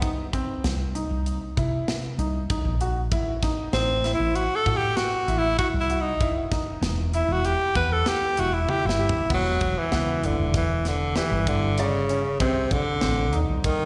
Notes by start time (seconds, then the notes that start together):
Already playing: B3
0.01 C2 D#4, kick, closed hi-hat
0.33 C4, kick, closed hi-hat
0.64 C2, snare, closed hi-hat
0.95 D#4, closed hi-hat
1.10 C2
1.26 closed hi-hat
1.57 C3 E4, kick, closed hi-hat
1.88 snare, closed hi-hat
2.18 C2 D#4, closed hi-hat
2.50 D#4, kick, closed hi-hat
2.65 A#1
2.81 F#4, closed hi-hat
3.12 A1 E4, kick, closed hi-hat
3.42 D#4, kick, snare, closed hi-hat
3.73 A1 C4, snare, closed hi-hat
4.04 E4, snare, closed hi-hat
4.14 E4
4.19 A1
4.35 F#4, closed hi-hat
4.56 A4
4.66 A2 F#4, kick, closed hi-hat
4.76 G4
4.97 F#4, snare, closed hi-hat
5.28 A1 E4, closed hi-hat
5.38 E4
5.59 E4 F#4, kick, closed hi-hat
5.74 C2
5.81 E4
5.90 F#4, closed hi-hat
6.01 D#4
6.21 E1 E4, kick, closed hi-hat
6.51 D#4, kick, snare, closed hi-hat
6.81 E1, snare, closed hi-hat
7.13 E4, closed hi-hat
7.28 E1 F#4
7.45 G4, closed hi-hat
7.75 E2 B4 F#5, kick, closed hi-hat
7.92 A4
8.06 G4, snare, closed hi-hat
8.37 E1 E4 F#4, closed hi-hat
8.53 E4
8.69 E4 G4, high tom
8.85 G1 E4
8.89 snare
8.99 G4
9.09 floor tom
9.30 E1 F#3 B3, kick, crash
9.61 E1, kick, closed hi-hat
9.79 E3
9.92 C#2 B3, snare, closed hi-hat
10.23 G1 D3 E4, closed hi-hat
10.39 E1
10.54 E3, kick, snare, closed hi-hat
10.85 D3, snare, closed hi-hat
11.16 E3 G4, snare, closed hi-hat
11.31 G1
11.47 D3 E4, kick, closed hi-hat
11.78 C#3 D5, closed hi-hat
12.09 C#4, closed hi-hat
12.40 C2 C3 C4, kick, closed hi-hat
12.71 C2 D3, kick, closed hi-hat
13.01 A1 C4, snare, closed hi-hat
13.33 D#2 D#4, closed hi-hat
13.49 C2
13.64 D#3, kick, closed hi-hat